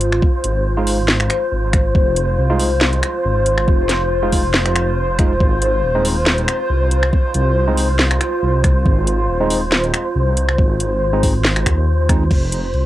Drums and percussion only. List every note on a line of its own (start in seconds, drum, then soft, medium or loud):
0.01 closed hi-hat medium
0.12 finger snap medium
0.22 kick loud
0.44 closed hi-hat medium
0.87 open hi-hat loud
1.08 snare loud
1.20 finger snap medium
1.20 closed hi-hat soft
1.30 finger snap medium
1.30 closed hi-hat medium
1.73 finger snap medium
1.73 kick loud
1.73 closed hi-hat medium
1.95 kick loud
2.16 closed hi-hat medium
2.60 open hi-hat medium
2.81 snare loud
2.93 closed hi-hat soft
3.03 finger snap medium
3.03 closed hi-hat medium
3.46 closed hi-hat medium
3.58 finger snap medium
3.68 kick loud
3.89 snare medium
3.89 closed hi-hat medium
4.32 kick medium
4.32 open hi-hat medium
4.54 snare loud
4.66 finger snap medium
4.66 closed hi-hat soft
4.76 finger snap medium
4.76 closed hi-hat medium
5.19 finger snap medium
5.19 kick loud
5.19 closed hi-hat medium
5.40 kick loud
5.62 closed hi-hat medium
6.05 open hi-hat medium
6.26 snare loud
6.38 closed hi-hat soft
6.48 finger snap medium
6.48 closed hi-hat medium
6.91 closed hi-hat medium
7.03 finger snap medium
7.13 kick loud
7.34 closed hi-hat medium
7.77 open hi-hat medium
7.99 snare loud
8.11 finger snap medium
8.11 closed hi-hat soft
8.21 finger snap medium
8.21 closed hi-hat medium
8.64 finger snap medium
8.64 kick loud
8.64 closed hi-hat medium
8.86 kick loud
9.07 closed hi-hat medium
9.50 open hi-hat loud
9.72 snare loud
9.84 closed hi-hat soft
9.94 finger snap medium
9.94 closed hi-hat medium
10.37 closed hi-hat medium
10.49 finger snap medium
10.58 kick loud
10.80 closed hi-hat medium
11.23 kick medium
11.23 open hi-hat loud
11.45 snare loud
11.56 finger snap medium
11.56 closed hi-hat soft
11.66 finger snap medium
11.66 kick medium
11.66 closed hi-hat medium
12.09 finger snap medium
12.09 kick loud
12.09 closed hi-hat medium
12.31 kick loud
12.31 crash medium
12.31 ride medium
12.52 closed hi-hat medium
12.74 ride soft